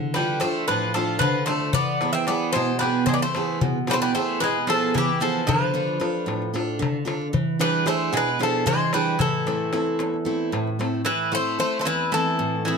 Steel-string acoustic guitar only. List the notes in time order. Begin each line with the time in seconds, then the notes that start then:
Already playing: D3
0.16 D4 F4 A4
0.42 D4 F4 A4
0.69 A2
0.95 D4 F4 A4
1.21 D3
1.48 D4 F4 A4
1.75 E3
2.01 B3 E4 G#4
2.28 B3 E4 G#4
2.56 B2
2.82 B3 E4 G#4
3.09 E3
3.36 B3 E4 G#4
3.61 B2
3.87 B3 E4 G#4
4.15 B3 E4 G#4
4.41 B2
4.67 B3 E4 G#4
4.95 E3
5.20 B3 E4 G#4
5.47 D3
5.74 D4 F4 A4
6.00 D4 F4 A4
6.26 A2
6.54 D4 F4 A4
6.79 D3
7.05 D4 F4 A4
7.33 E3
7.59 D4 E4 G#4
7.86 D4 E4 G#4
8.13 B2
8.39 D4 E4 G#4
8.66 E3
8.93 D4 E4 G#4
9.20 A2
9.47 A3 C4 E4
9.73 A3 C4 E4
10.00 E2
10.25 A3 C4 E4
10.52 A2
10.79 A3 C4 E4
11.07 A2
11.32 A3 C4 E4
11.59 A3 C4 E4
11.86 E2
12.12 A3 C4 E4
12.39 A2
12.65 A3 C4 E4